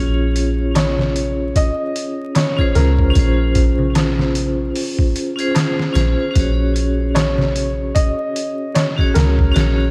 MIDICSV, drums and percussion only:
0, 0, Header, 1, 3, 480
1, 0, Start_track
1, 0, Key_signature, -5, "minor"
1, 0, Tempo, 800000
1, 1892, Time_signature, 4, 2, 24, 8
1, 5944, End_track
2, 0, Start_track
2, 0, Title_t, "Darbuka"
2, 451, Note_on_c, 9, 63, 77
2, 511, Note_off_c, 9, 63, 0
2, 590, Note_on_c, 9, 64, 74
2, 650, Note_off_c, 9, 64, 0
2, 1410, Note_on_c, 9, 63, 72
2, 1470, Note_off_c, 9, 63, 0
2, 1655, Note_on_c, 9, 64, 78
2, 1715, Note_off_c, 9, 64, 0
2, 2273, Note_on_c, 9, 64, 66
2, 2333, Note_off_c, 9, 64, 0
2, 2372, Note_on_c, 9, 63, 73
2, 2432, Note_off_c, 9, 63, 0
2, 2514, Note_on_c, 9, 64, 73
2, 2574, Note_off_c, 9, 64, 0
2, 3330, Note_on_c, 9, 63, 75
2, 3390, Note_off_c, 9, 63, 0
2, 4292, Note_on_c, 9, 63, 83
2, 4352, Note_off_c, 9, 63, 0
2, 4430, Note_on_c, 9, 64, 74
2, 4490, Note_off_c, 9, 64, 0
2, 5254, Note_on_c, 9, 63, 75
2, 5314, Note_off_c, 9, 63, 0
2, 5496, Note_on_c, 9, 64, 71
2, 5556, Note_off_c, 9, 64, 0
2, 5944, End_track
3, 0, Start_track
3, 0, Title_t, "Drums"
3, 215, Note_on_c, 9, 42, 63
3, 275, Note_off_c, 9, 42, 0
3, 453, Note_on_c, 9, 42, 83
3, 457, Note_on_c, 9, 38, 105
3, 513, Note_off_c, 9, 42, 0
3, 517, Note_off_c, 9, 38, 0
3, 596, Note_on_c, 9, 38, 33
3, 656, Note_off_c, 9, 38, 0
3, 694, Note_on_c, 9, 42, 59
3, 754, Note_off_c, 9, 42, 0
3, 934, Note_on_c, 9, 36, 109
3, 934, Note_on_c, 9, 42, 87
3, 994, Note_off_c, 9, 36, 0
3, 994, Note_off_c, 9, 42, 0
3, 1175, Note_on_c, 9, 42, 61
3, 1235, Note_off_c, 9, 42, 0
3, 1412, Note_on_c, 9, 42, 84
3, 1416, Note_on_c, 9, 38, 105
3, 1472, Note_off_c, 9, 42, 0
3, 1476, Note_off_c, 9, 38, 0
3, 1552, Note_on_c, 9, 36, 89
3, 1612, Note_off_c, 9, 36, 0
3, 1652, Note_on_c, 9, 42, 64
3, 1655, Note_on_c, 9, 38, 37
3, 1712, Note_off_c, 9, 42, 0
3, 1715, Note_off_c, 9, 38, 0
3, 1791, Note_on_c, 9, 36, 85
3, 1851, Note_off_c, 9, 36, 0
3, 1892, Note_on_c, 9, 36, 107
3, 1892, Note_on_c, 9, 42, 82
3, 1952, Note_off_c, 9, 36, 0
3, 1952, Note_off_c, 9, 42, 0
3, 2131, Note_on_c, 9, 42, 66
3, 2132, Note_on_c, 9, 36, 86
3, 2191, Note_off_c, 9, 42, 0
3, 2192, Note_off_c, 9, 36, 0
3, 2372, Note_on_c, 9, 42, 81
3, 2375, Note_on_c, 9, 38, 109
3, 2432, Note_off_c, 9, 42, 0
3, 2435, Note_off_c, 9, 38, 0
3, 2516, Note_on_c, 9, 38, 38
3, 2576, Note_off_c, 9, 38, 0
3, 2611, Note_on_c, 9, 42, 65
3, 2671, Note_off_c, 9, 42, 0
3, 2853, Note_on_c, 9, 46, 77
3, 2913, Note_off_c, 9, 46, 0
3, 2991, Note_on_c, 9, 36, 88
3, 3051, Note_off_c, 9, 36, 0
3, 3094, Note_on_c, 9, 42, 65
3, 3154, Note_off_c, 9, 42, 0
3, 3232, Note_on_c, 9, 42, 41
3, 3292, Note_off_c, 9, 42, 0
3, 3334, Note_on_c, 9, 42, 81
3, 3337, Note_on_c, 9, 38, 112
3, 3394, Note_off_c, 9, 42, 0
3, 3397, Note_off_c, 9, 38, 0
3, 3477, Note_on_c, 9, 38, 43
3, 3537, Note_off_c, 9, 38, 0
3, 3572, Note_on_c, 9, 42, 66
3, 3576, Note_on_c, 9, 38, 47
3, 3632, Note_off_c, 9, 42, 0
3, 3636, Note_off_c, 9, 38, 0
3, 3812, Note_on_c, 9, 42, 80
3, 3813, Note_on_c, 9, 36, 103
3, 3872, Note_off_c, 9, 42, 0
3, 3873, Note_off_c, 9, 36, 0
3, 4054, Note_on_c, 9, 42, 62
3, 4114, Note_off_c, 9, 42, 0
3, 4295, Note_on_c, 9, 42, 84
3, 4299, Note_on_c, 9, 38, 107
3, 4355, Note_off_c, 9, 42, 0
3, 4359, Note_off_c, 9, 38, 0
3, 4438, Note_on_c, 9, 38, 33
3, 4498, Note_off_c, 9, 38, 0
3, 4534, Note_on_c, 9, 42, 61
3, 4594, Note_off_c, 9, 42, 0
3, 4773, Note_on_c, 9, 42, 92
3, 4774, Note_on_c, 9, 36, 115
3, 4833, Note_off_c, 9, 42, 0
3, 4834, Note_off_c, 9, 36, 0
3, 5016, Note_on_c, 9, 42, 67
3, 5076, Note_off_c, 9, 42, 0
3, 5253, Note_on_c, 9, 42, 86
3, 5256, Note_on_c, 9, 38, 114
3, 5313, Note_off_c, 9, 42, 0
3, 5316, Note_off_c, 9, 38, 0
3, 5393, Note_on_c, 9, 36, 93
3, 5453, Note_off_c, 9, 36, 0
3, 5493, Note_on_c, 9, 42, 77
3, 5496, Note_on_c, 9, 38, 102
3, 5553, Note_off_c, 9, 42, 0
3, 5556, Note_off_c, 9, 38, 0
3, 5633, Note_on_c, 9, 36, 86
3, 5693, Note_off_c, 9, 36, 0
3, 5734, Note_on_c, 9, 42, 78
3, 5738, Note_on_c, 9, 38, 102
3, 5794, Note_off_c, 9, 42, 0
3, 5798, Note_off_c, 9, 38, 0
3, 5944, End_track
0, 0, End_of_file